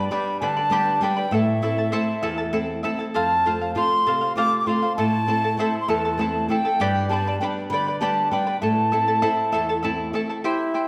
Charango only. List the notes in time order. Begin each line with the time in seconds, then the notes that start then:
Already playing: B4 D5 B5
0.11 B4 D5 G5 B5
0.42 B4 D5 G5 B5
0.57 B4 D5 B5
0.72 G4 B4 D5 G5 B5
1.03 B4 D5 G5 B5
1.17 B4 D5 B5
1.32 E4 A4 E5 A5
1.63 E4 A4 E5 A5
1.78 E4 A4 A5
1.92 E4 A4 C5 E5 A5
2.23 E4 A4 E5 A5
2.38 E4 A4 A5
2.53 E4 A4 E5 A5
2.83 E4 A4 E5 A5
2.99 E4 A4 A5
3.14 A4 C5 F5
3.45 A4 C5 F5
3.61 C5 F5
3.76 A4 C5 F5
4.07 A4 C5 F5
4.21 C5 F5
4.37 A4 C5 F5
4.68 A4 C5 F5
4.82 C5 F5
4.98 E4 A4 E5 A5
5.28 E4 A4 E5 A5
5.44 E4 A4 A5
5.59 E4 A4 C5 E5 A5
5.89 E4 A4 E5 A5
6.05 E4 A4 A5
6.19 E4 A4 E5 A5
6.50 E4 A4 E5 A5
6.65 E4 A4 A5
6.81 G4 B4 D5 G5 B5
7.11 B4 D5 G5 B5
7.27 B4 D5 B5
7.42 B4 D5 G5 B5
7.72 B4 D5 G5 B5
7.87 B4 D5 B5
8.01 G4 B4 D5 G5 B5
8.32 B4 D5 G5 B5
8.47 B4 D5 B5
8.62 E4 A4 E5 A5
8.92 E4 A4 E5 A5
9.08 E4 A4 A5
9.22 E4 A4 C5 E5 A5
9.53 E4 A4 E5 A5
9.69 E4 A4 A5
9.83 E4 A4 E5 A5
10.14 E4 A4 E5 A5
10.30 E4 A4 A5
10.44 E4 G4 C5 E5 G5
10.74 E4 C5 E5 G5